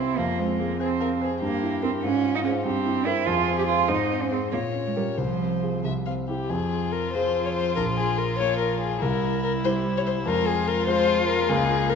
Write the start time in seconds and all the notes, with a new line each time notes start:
Already playing: C2 C4 E4 G4 C5 E5
0.17 F2 A#3 F4
0.39 G#3 C4
0.60 A#3 G#4
0.80 C4 G#4 C5
1.00 A#4 F5
1.21 G#4 C5
1.41 G2 A#3 G4
1.63 E4
1.82 C4 E4 A#4
2.03 G#2 C#4 F4
2.24 F4
2.35 D#4
2.43 C#4 G#4 C5
2.64 G2 C4 G4
2.86 E4
3.06 E4 A#4 C5
3.26 F2 F4 G#4
3.48 C4
3.58 G4
3.68 F4 G#4 C5
3.88 G#2 D#4 C5
4.10 C4
4.22 C#4
4.31 C4 G#4 C5
4.52 A#2 A#3 C#5
4.74 C#4
4.87 G#3
4.96 G3 G4 A#4
5.18 C2 F3 C5
5.40 C4
5.62 F4 G#4
5.84 C2 E5
6.06 C4 F5
6.28 E4 G4
6.50 F2 F3 F4 G#4
6.92 A#4
7.13 C4 F4 G#4 C5
7.46 C#5
7.55 C5
7.76 A#1 A#4
7.97 G#4
8.18 A#4
8.38 A#3 F4 C#5
8.59 A#4
8.80 G#4
9.02 C2 G3 E4 A#4
9.43 A#4
9.64 G3 E4 C5
9.97 C#5
10.07 C5
10.26 F2 G#3 F4 A#4
10.47 G#4
10.68 A#4
10.87 G#3 F4 C5
11.28 A#4
11.49 C#2 A#3 F4 G#4 A#4
11.89 A#4